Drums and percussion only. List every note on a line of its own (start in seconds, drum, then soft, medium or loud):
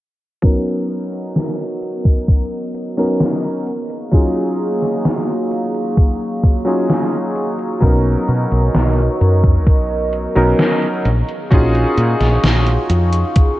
0.44 kick loud
0.44 closed hi-hat medium
0.90 closed hi-hat medium
1.13 closed hi-hat soft
1.36 snare loud
1.36 closed hi-hat medium
1.59 closed hi-hat soft
1.82 closed hi-hat medium
2.05 kick medium
2.05 closed hi-hat medium
2.28 kick loud
2.28 closed hi-hat medium
2.75 closed hi-hat medium
2.98 closed hi-hat soft
3.20 snare loud
3.20 closed hi-hat medium
3.44 closed hi-hat soft
3.67 closed hi-hat medium
3.90 closed hi-hat medium
4.13 kick loud
4.13 closed hi-hat medium
4.59 closed hi-hat medium
4.82 snare soft
4.82 closed hi-hat soft
5.05 snare loud
5.05 closed hi-hat medium
5.28 closed hi-hat soft
5.51 closed hi-hat medium
5.74 closed hi-hat medium
5.97 kick loud
5.97 closed hi-hat medium
6.44 kick medium
6.44 closed hi-hat medium
6.67 closed hi-hat medium
6.90 snare loud
6.90 closed hi-hat medium
7.13 closed hi-hat soft
7.36 closed hi-hat medium
7.59 closed hi-hat medium
7.82 kick loud
7.82 closed hi-hat medium
8.28 closed hi-hat medium
8.52 closed hi-hat medium
8.75 snare loud
8.75 closed hi-hat medium
8.98 closed hi-hat soft
9.21 closed hi-hat medium
9.44 kick loud
9.44 closed hi-hat medium
9.67 kick loud
9.67 closed hi-hat medium
10.13 closed hi-hat medium
10.36 closed hi-hat medium
10.59 snare loud
10.59 closed hi-hat medium
10.82 closed hi-hat soft
11.05 closed hi-hat medium
11.29 closed hi-hat soft
11.51 kick loud
11.51 closed hi-hat medium
11.75 closed hi-hat soft
11.98 closed hi-hat medium
12.21 snare soft
12.21 closed hi-hat soft
12.44 snare loud
12.44 closed hi-hat medium
12.67 closed hi-hat soft
12.90 closed hi-hat medium
13.13 closed hi-hat soft
13.36 kick loud
13.36 closed hi-hat medium